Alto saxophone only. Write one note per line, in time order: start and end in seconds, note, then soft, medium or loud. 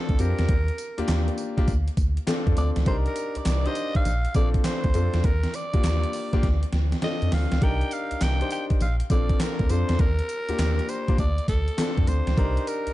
0.00 0.23 A4 medium
0.21 1.09 A#4 medium
2.58 2.71 D5 medium
2.87 2.96 C5 loud
3.07 3.38 A#4 medium
3.37 3.68 D5 loud
3.67 3.96 D#5 loud
3.96 4.33 F5 loud
4.36 4.49 D5 loud
4.65 5.26 C5 loud
5.25 5.56 A#4 loud
5.55 6.73 D5 loud
7.04 7.35 D#5 loud
7.34 7.65 F5 loud
7.63 7.94 G5 loud
7.93 8.24 F5 loud
8.23 8.51 G5 loud
8.52 8.65 G5 loud
8.82 8.95 F5 loud
9.11 9.42 D5 loud
9.41 9.72 A#4 loud
9.70 10.01 C5 loud
10.00 10.91 A#4 loud
10.89 11.18 C5 loud
11.19 11.46 D5 loud
11.49 12.10 A4 loud
12.08 12.69 C5 loud
12.67 12.93 A#4 medium